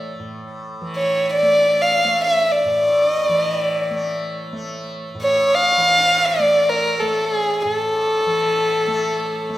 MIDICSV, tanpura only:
0, 0, Header, 1, 2, 480
1, 0, Start_track
1, 0, Tempo, 500000
1, 9196, End_track
2, 0, Start_track
2, 0, Title_t, "Tanpura"
2, 0, Program_c, 0, 104
2, 0, Note_on_c, 0, 45, 61
2, 0, Note_on_c, 0, 52, 58
2, 0, Note_on_c, 0, 57, 58
2, 183, Note_off_c, 0, 45, 0
2, 187, Note_on_c, 0, 45, 49
2, 775, Note_off_c, 0, 52, 0
2, 779, Note_on_c, 0, 52, 55
2, 1367, Note_off_c, 0, 57, 0
2, 1367, Note_on_c, 0, 57, 49
2, 1964, Note_off_c, 0, 57, 0
2, 1964, Note_on_c, 0, 57, 53
2, 2541, Note_off_c, 0, 45, 0
2, 2545, Note_on_c, 0, 45, 59
2, 3153, Note_off_c, 0, 52, 0
2, 3157, Note_on_c, 0, 52, 63
2, 3749, Note_off_c, 0, 57, 0
2, 3749, Note_on_c, 0, 57, 57
2, 4345, Note_off_c, 0, 57, 0
2, 4345, Note_on_c, 0, 57, 55
2, 4936, Note_off_c, 0, 45, 0
2, 4939, Note_on_c, 0, 45, 62
2, 5534, Note_off_c, 0, 52, 0
2, 5538, Note_on_c, 0, 52, 56
2, 6136, Note_off_c, 0, 57, 0
2, 6136, Note_on_c, 0, 57, 56
2, 6734, Note_off_c, 0, 57, 0
2, 6734, Note_on_c, 0, 57, 54
2, 7338, Note_off_c, 0, 45, 0
2, 7341, Note_on_c, 0, 45, 58
2, 7926, Note_off_c, 0, 52, 0
2, 7930, Note_on_c, 0, 52, 64
2, 8519, Note_off_c, 0, 57, 0
2, 8519, Note_on_c, 0, 57, 64
2, 9114, Note_off_c, 0, 57, 0
2, 9114, Note_on_c, 0, 57, 61
2, 9196, Note_off_c, 0, 45, 0
2, 9196, Note_off_c, 0, 52, 0
2, 9196, Note_off_c, 0, 57, 0
2, 9196, End_track
0, 0, End_of_file